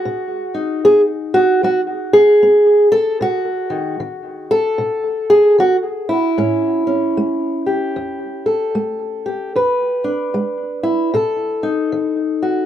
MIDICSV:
0, 0, Header, 1, 2, 480
1, 0, Start_track
1, 0, Tempo, 792602
1, 31, Time_signature, 4, 2, 24, 8
1, 7665, End_track
2, 0, Start_track
2, 0, Title_t, "Steel-string acoustic guitar"
2, 0, Program_c, 0, 25
2, 0, Note_on_c, 0, 66, 81
2, 0, Note_on_c, 0, 71, 46
2, 32, Note_on_c, 0, 47, 65
2, 242, Note_off_c, 0, 71, 0
2, 330, Note_on_c, 0, 63, 44
2, 473, Note_off_c, 0, 47, 0
2, 509, Note_off_c, 0, 66, 0
2, 513, Note_on_c, 0, 59, 60
2, 514, Note_on_c, 0, 68, 88
2, 609, Note_off_c, 0, 68, 0
2, 812, Note_on_c, 0, 66, 87
2, 952, Note_off_c, 0, 59, 0
2, 988, Note_off_c, 0, 66, 0
2, 988, Note_on_c, 0, 54, 59
2, 995, Note_on_c, 0, 66, 84
2, 1092, Note_off_c, 0, 66, 0
2, 1292, Note_on_c, 0, 68, 94
2, 1429, Note_off_c, 0, 54, 0
2, 1469, Note_on_c, 0, 59, 60
2, 1764, Note_off_c, 0, 68, 0
2, 1767, Note_on_c, 0, 69, 100
2, 1909, Note_off_c, 0, 59, 0
2, 1924, Note_off_c, 0, 63, 0
2, 1942, Note_on_c, 0, 47, 69
2, 1947, Note_off_c, 0, 69, 0
2, 1951, Note_on_c, 0, 66, 85
2, 2240, Note_on_c, 0, 51, 42
2, 2385, Note_off_c, 0, 47, 0
2, 2415, Note_off_c, 0, 51, 0
2, 2422, Note_on_c, 0, 51, 59
2, 2730, Note_on_c, 0, 69, 97
2, 2864, Note_off_c, 0, 51, 0
2, 2896, Note_on_c, 0, 47, 59
2, 3201, Note_off_c, 0, 66, 0
2, 3209, Note_on_c, 0, 68, 84
2, 3341, Note_off_c, 0, 47, 0
2, 3382, Note_on_c, 0, 51, 62
2, 3387, Note_off_c, 0, 68, 0
2, 3391, Note_on_c, 0, 66, 90
2, 3487, Note_off_c, 0, 66, 0
2, 3683, Note_off_c, 0, 69, 0
2, 3688, Note_on_c, 0, 64, 68
2, 3824, Note_off_c, 0, 51, 0
2, 3862, Note_on_c, 0, 45, 68
2, 3865, Note_on_c, 0, 61, 50
2, 4152, Note_off_c, 0, 61, 0
2, 4160, Note_on_c, 0, 61, 44
2, 4305, Note_off_c, 0, 45, 0
2, 4344, Note_on_c, 0, 57, 60
2, 4641, Note_on_c, 0, 67, 43
2, 4786, Note_off_c, 0, 57, 0
2, 4821, Note_on_c, 0, 40, 59
2, 4827, Note_off_c, 0, 64, 0
2, 5123, Note_on_c, 0, 69, 47
2, 5265, Note_off_c, 0, 40, 0
2, 5299, Note_on_c, 0, 57, 60
2, 5600, Note_off_c, 0, 67, 0
2, 5606, Note_on_c, 0, 67, 47
2, 5744, Note_off_c, 0, 57, 0
2, 5762, Note_off_c, 0, 61, 0
2, 5763, Note_off_c, 0, 69, 0
2, 5764, Note_off_c, 0, 67, 0
2, 5787, Note_on_c, 0, 40, 64
2, 5791, Note_on_c, 0, 71, 62
2, 6082, Note_on_c, 0, 62, 49
2, 6228, Note_off_c, 0, 40, 0
2, 6263, Note_on_c, 0, 56, 59
2, 6561, Note_on_c, 0, 64, 57
2, 6707, Note_off_c, 0, 56, 0
2, 6723, Note_off_c, 0, 64, 0
2, 6724, Note_off_c, 0, 62, 0
2, 6726, Note_off_c, 0, 71, 0
2, 6744, Note_on_c, 0, 47, 73
2, 6749, Note_on_c, 0, 69, 63
2, 7044, Note_on_c, 0, 63, 52
2, 7189, Note_off_c, 0, 47, 0
2, 7220, Note_on_c, 0, 51, 56
2, 7525, Note_on_c, 0, 66, 51
2, 7665, Note_off_c, 0, 51, 0
2, 7665, Note_off_c, 0, 63, 0
2, 7665, Note_off_c, 0, 66, 0
2, 7665, Note_off_c, 0, 69, 0
2, 7665, End_track
0, 0, End_of_file